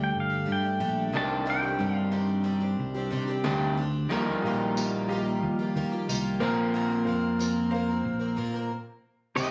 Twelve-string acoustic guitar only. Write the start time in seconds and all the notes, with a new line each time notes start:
Already playing: D4 G4
0.00 A3
0.30 A3 D4 G4
0.45 G3 A3 D4 G4
0.63 A3 D4 G4
0.80 G3 A3 D4 G4
1.12 D#3 C4 D4 G4
1.46 C3 D#3 C4 D4 G4
1.63 C4 D4 G4
1.79 D#3 C4 D4 G4
2.11 C3 D#3 C4 D4 G4
2.44 D#3 C4 D4 G4
2.60 C4 D4 G4
2.94 C4 D4 G4
3.10 D#3 C4 D4 G4
3.27 C4 D4 G4
3.44 C3 C4 D4 G4
3.77 C4 D4 G4
4.10 D#3 A#3 F4 G4
4.27 A#3 F4 G4
4.45 D#3 A#3 F4 G4
4.77 D#3 A#3 F4 G4
5.10 D#3 A#3 F4 G4
5.26 A#3 F4 G4
5.59 A#3 F4 G4
5.76 D#3 A#3 F4 G4
5.91 A#3 F4 G4
6.09 D#3 A#3 F4 G4
6.41 F3 A#3 C4 A#4
6.74 A#2 F3 A#3 C4 A#4
6.90 A#3 C4 A#4
7.07 F3 A#3 C4 A#4
7.39 A#2 F3 A#3 C4 A#4
7.74 F3 A#3 C4 A#4
7.89 A#3 C4 A#4
8.19 A#3 C4 A#4
8.36 F3 A#3 C4 A#4
8.54 A#3 C4 A#4
9.36 C3 D#3 C4 D#4 G4